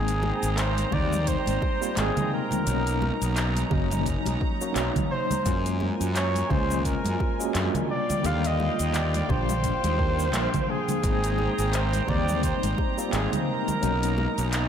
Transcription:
Already playing: G#1 G#3 A#3 C4 D#4 G#4 C5 G5 A#5
0.08 closed hi-hat, shaker
0.23 high bongo, high conga
0.43 G#1, closed hi-hat, shaker
0.58 C5, clap, closed hi-hat, shaker
0.77 closed hi-hat, high conga, shaker
0.91 D#2 G3 A#3 C4 D#4 D5, kick, low conga
1.13 mid tom, shaker
1.27 C5, kick, closed hi-hat, shaker
1.46 G#1, closed hi-hat, high conga, shaker
1.62 kick, high bongo
1.81 G3 A#3 C4 F4, shaker
1.96 G#1 G#3 A#3 C4 D#4 G#4, clap, closed hi-hat, high conga, shaker
2.17 closed hi-hat, mid tom, low conga, shaker
2.33 A#4
2.51 closed hi-hat, mid tom, high conga, low conga, shaker
2.65 B1 F#3 A#3 C#4 D#4 A#5, closed hi-hat, shaker
2.87 closed hi-hat, shaker
3.02 high bongo, high conga
3.22 B1, closed hi-hat, shaker
3.36 clap, closed hi-hat, shaker
3.56 closed hi-hat, high conga, shaker
3.70 F#1 F#3 A#3 C#4 D#4, kick, high bongo, low conga
3.91 closed hi-hat, mid tom, shaker
4.06 kick, closed hi-hat, shaker
4.25 B1, closed hi-hat, high bongo, high conga, shaker
4.41 kick
4.61 F#3 A#3 C#4 F#4, shaker
4.75 B1 F#3 A#3 C#4 D#4, clap, closed hi-hat, high conga, shaker
4.96 kick, closed hi-hat, mid tom, low conga, shaker
5.11 C5
5.31 closed hi-hat, high conga, low conga, shaker
5.44 F#2 G#3 A#3 C#4 F4 A#4 G#5, kick, closed hi-hat, shaker
5.66 closed hi-hat, shaker
5.80 high bongo, high conga
6.01 F#2, closed hi-hat, shaker
6.16 C#5, clap, closed hi-hat, shaker
6.36 closed hi-hat, high conga, shaker
6.48 C#2 G#3 A#3 C#4 F4 C5, kick, low conga
6.71 mid tom, shaker
6.85 A#4, kick, closed hi-hat, shaker
7.04 F#2, closed hi-hat, high conga, shaker
7.20 kick, high bongo
7.39 G#3 A#3 C#4 F#4, shaker
7.54 F#2 G3 A#3 D4 F4, clap, closed hi-hat, high conga, shaker
7.75 closed hi-hat, mid tom, low conga, shaker
7.90 D5 F5 G5
8.10 closed hi-hat, mid tom, high conga, low conga, shaker
8.23 D#2 D3 G3 A#3 F4 F5, closed hi-hat, shaker
8.44 D#5, closed hi-hat, shaker
8.60 high bongo, high conga
8.79 D#2, closed hi-hat, shaker
8.94 D5, clap, closed hi-hat, shaker
9.14 D5, closed hi-hat, high conga, shaker
9.28 A#1 G3 A#3 D4 F4 C5, kick, high bongo, low conga
9.49 closed hi-hat, mid tom, shaker
9.64 kick, closed hi-hat, shaker
9.84 D#2, closed hi-hat, high bongo, high conga, shaker
9.98 G3 A#3 D4 A#4, kick
10.19 shaker
10.33 A#1, clap, closed hi-hat, high conga, shaker
10.54 kick, closed hi-hat, mid tom, low conga, shaker
10.68 F3 A#3 D4 G#4 G5
10.88 closed hi-hat, high conga, low conga, shaker
11.02 G#1 G#3 A#3 C4 D#4 C5 G5 A#5, kick, closed hi-hat, shaker
11.24 closed hi-hat, shaker
11.38 high bongo, high conga
11.58 G#1, closed hi-hat, shaker
11.73 C5, clap, closed hi-hat, shaker
11.93 closed hi-hat, high conga, shaker
12.07 D#2 G3 A#3 C4 D#4 D5, kick, low conga
12.28 mid tom, shaker
12.43 C5, kick, closed hi-hat, shaker
12.63 G#1, closed hi-hat, high conga, shaker
12.78 kick, high bongo
12.97 G3 A#3 C4 F4, shaker
13.12 G#1 G#3 A#3 C4 D#4 G#4, clap, closed hi-hat, high conga, shaker
13.33 closed hi-hat, mid tom, low conga, shaker
13.49 A#4
13.68 closed hi-hat, mid tom, high conga, low conga, shaker
13.81 B1 F#3 A#3 C#4 D#4, closed hi-hat, shaker
14.03 closed hi-hat, shaker
14.18 high bongo, high conga
14.38 B1, closed hi-hat, shaker
14.53 clap, closed hi-hat, shaker

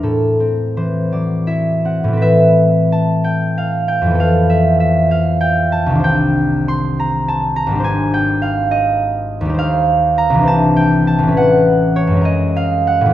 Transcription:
Already playing: E4 A#4 C5
0.03 A2 A4
0.40 C4
0.77 E3 C5
1.12 F#3 D5
1.47 E4 E5
1.85 C4 F#5
2.04 A2
2.08 E3
2.13 C4
2.17 B4
2.22 E5
2.92 A5
3.24 G5
3.58 F5
3.88 G5
4.02 F2
4.06 E3
4.11 B3
4.15 A4
4.20 F5
4.50 E5
4.80 E5
5.11 F5
5.41 G5
5.72 A5
5.86 C2
5.91 D#3
5.95 D4
6.00 C5
6.04 G5
6.68 C6
7.00 A#5
7.28 A5
7.56 A#5
7.67 G#1
7.71 G3
7.75 D4
7.80 C5
7.84 G#5
8.14 G5
8.42 F5
8.71 D#5
9.41 D#2
9.45 G3 D#4
9.54 C5
9.59 F5
10.18 A#5
10.30 C2
10.34 E3
10.39 D4
10.43 C5
10.47 A5
10.76 G5
11.07 A5
11.19 A1
11.23 E3
11.28 C#4
11.32 B4
11.37 F#5
11.96 C#5
12.07 F#2
12.12 G#3
12.16 C#4
12.21 A#4
12.25 D#5
12.56 F5
12.87 F#5
13.01 A2
13.06 E3 C4

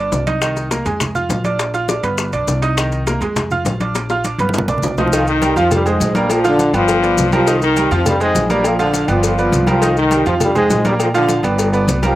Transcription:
Already playing: D4 D5 D6
0.12 C2, high bongo, low bongo, high conga, low timbale, maracas
0.27 D#4 D#5 D#6, high bongo, high conga, high timbale, maracas
0.41 D#3 D#4 D#5, high bongo, high timbale, maracas
0.56 high bongo, high conga, maracas
0.71 A#3 A#4 A#5, high bongo, high conga, high timbale, maracas
0.85 F2 G#3 G#4 G#5, high bongo, high conga, high timbale, maracas
1.00 high bongo, high conga, low conga, high timbale, maracas
1.15 F4 F5 F6, high conga, low conga, maracas
1.29 A#1, high bongo, low bongo, high conga, high timbale, low timbale, maracas
1.44 D4 D5 D6, high bongo, high conga, high timbale, maracas
1.59 high bongo, high conga, high timbale, maracas
1.74 F4 F5 F6, high bongo, high conga, maracas
1.89 D4 D5 D6, high bongo, high conga, high timbale, maracas
2.03 G1 B3 B4 B5, high bongo, high conga, high timbale, maracas
2.18 high bongo, high conga, maracas
2.33 B1 D4 D5 D6, high conga, high timbale, maracas
2.47 C2, high bongo, low bongo, high conga, maracas
2.62 D#4 D#5 D#6, high bongo, high timbale, maracas
2.77 D#3 D#4 D#5, high bongo, high conga, high timbale, maracas
2.92 high bongo, high conga, maracas
3.07 A#3 A#4 A#5, high bongo, high conga, high timbale, maracas
3.21 F2 G#3 G#4 G#5, high bongo, high conga, high timbale, maracas
3.36 high bongo, high conga, low conga, high timbale, maracas
3.51 F4 F5 F6, high conga, low conga, maracas
3.65 A#1, high bongo, low bongo, high conga, high timbale, low timbale, maracas
3.80 D4 D5 D6, high bongo, high conga, high timbale, maracas
3.95 high bongo, high conga, high timbale, maracas
4.09 F4 F5 F6, high bongo, high conga, maracas
4.24 D4 D5 D6, high conga, high timbale, maracas
4.38 G1 B3 B4 B5, high conga, high timbale, maracas
4.49 high conga
4.54 low bongo, high timbale, maracas
4.58 low conga
4.68 B1 D4 D5 D6, low conga, high timbale, maracas
4.78 low conga
4.82 C2, low bongo, low timbale, maracas
4.88 low conga
4.98 F3 D#4 F4 D#5 D#6, low bongo, low conga, low timbale, maracas
5.07 low conga
5.12 D#3 D#4 D#5, cowbell, high conga, low agogo, maracas
5.27 D#3 D#4, high conga, maracas
5.42 G3 G4 A#4, cowbell, high conga, low agogo, maracas
5.56 F2 F3 F4 F5, high conga, low agogo, maracas
5.71 G2 G3, cowbell, high conga, low conga, low agogo, maracas
5.86 G#2 G#3 G#4 C5, high conga, low agogo, maracas
6.00 A#1, cowbell, high conga, low timbale, maracas
6.15 G2 G3 A#3 A#4 D5, cowbell, high conga, low agogo, maracas
6.30 F3 F4, cowbell, high conga, low agogo, maracas
6.44 D3 F3 D4 F4 F5, high conga, low agogo, maracas
6.59 cowbell, high conga, maracas
6.73 G1 F3 B3 F4 B4 D5, cowbell, high conga, low agogo, maracas
6.88 cowbell, high conga, low agogo, maracas
7.02 B3 B4 D5, high conga, maracas
7.17 C2, cowbell, high conga, low timbale, low agogo, maracas
7.32 F3 G3 F4 G4 A#4, cowbell, high conga, low agogo, maracas
7.47 D#3 D#4 D#5, cowbell, low agogo, maracas
7.62 D#3 D#4, high conga, maracas
7.76 G3 G4 A#4, cowbell, high conga, low agogo, maracas
7.91 F2 F3 F4 F5, high conga, low agogo, maracas
8.06 G2 G3, cowbell, high conga, low conga, low agogo, maracas
8.20 G#2 G#3 G#4 C5, high conga, low agogo, maracas
8.35 A#1, cowbell, high conga, low timbale, maracas
8.50 G2 G3 A#3 A#4 D5, cowbell, high conga, low agogo, maracas
8.64 F3 F4, cowbell, high conga, low agogo, maracas
8.79 D3 F3 D4 F4 F5, high conga, low agogo, maracas
8.94 cowbell, high conga, maracas
9.08 G1 F3 B3 F4 B4 D5, cowbell, high conga, low agogo, maracas
9.23 cowbell, high conga, low agogo, maracas
9.38 B3 B4 D5, high conga, maracas
9.52 C2, cowbell, high conga, low agogo, maracas
9.67 F3 G3 F4 G4 A#4, cowbell, high conga, low agogo, maracas
9.82 D#3 D#4 D#5, cowbell, high conga, low agogo, maracas
9.96 D#3 D#4, high conga, maracas
10.11 G3 G4 A#4, cowbell, high conga, low agogo, maracas
10.26 F2 F3 F4 F5, high conga, low agogo, maracas
10.40 G2 G3, cowbell, high conga, low conga, low agogo, maracas
10.55 G#2 G#3 G#4 C5, high conga, low conga, low agogo, maracas
10.70 A#1, cowbell, high conga, low timbale, maracas
10.85 G2 G3 A#3 A#4 D5, cowbell, high conga, low agogo, maracas
10.99 F3 F4, cowbell, high conga, low agogo, maracas
11.14 D3 F3 D4 F4 F5, high conga, low agogo, maracas
11.29 cowbell, high conga, maracas
11.43 G1 B3 B4 D5, cowbell, high conga, low agogo, maracas
11.59 cowbell, high conga, low agogo, maracas
11.73 B3 B4 D5, high conga, maracas
11.87 C2, cowbell, high conga, low timbale, low agogo, maracas
12.02 F3 G3 F4 G4 A#4, cowbell, high conga, low agogo, maracas

